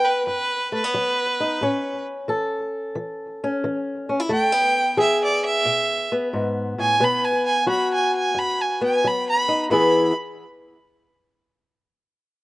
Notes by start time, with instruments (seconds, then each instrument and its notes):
Already playing: steel-string acoustic guitar F#3 B3 B4
0.05 fiddle B4
0.27 steel-string acoustic guitar F#2, fiddle B4
0.72 steel-string acoustic guitar A3, fiddle B4
0.84 steel-string acoustic guitar B3
0.94 steel-string acoustic guitar F#3
1.40 steel-string acoustic guitar D#4
1.61 steel-string acoustic guitar A2 C#4
2.28 steel-string acoustic guitar E3 A4
2.95 steel-string acoustic guitar E3
3.44 steel-string acoustic guitar C#4
3.64 steel-string acoustic guitar E3
4.09 steel-string acoustic guitar C#4
4.20 steel-string acoustic guitar E4
4.29 steel-string acoustic guitar E2 A3, fiddle G5
4.52 steel-string acoustic guitar B3
4.97 steel-string acoustic guitar E3 G#4, fiddle E5
5.24 fiddle D5
5.45 fiddle E5
5.65 steel-string acoustic guitar B2
6.12 steel-string acoustic guitar B3
6.33 steel-string acoustic guitar G#2
6.78 steel-string acoustic guitar A2, fiddle G#5
7.00 steel-string acoustic guitar B2 B3, fiddle B5
7.25 fiddle G#5
7.46 fiddle G#5
7.66 steel-string acoustic guitar F#3 F#4, fiddle B5
7.94 fiddle G#5
8.15 fiddle G#5
8.34 steel-string acoustic guitar F#2
8.38 fiddle B5
8.61 fiddle G#5
8.81 steel-string acoustic guitar B3, fiddle G#5
9.04 steel-string acoustic guitar F#3, fiddle B5
9.29 fiddle B5
9.48 steel-string acoustic guitar D#4
9.70 steel-string acoustic guitar E2 E3 B3 E4 G#4, fiddle B5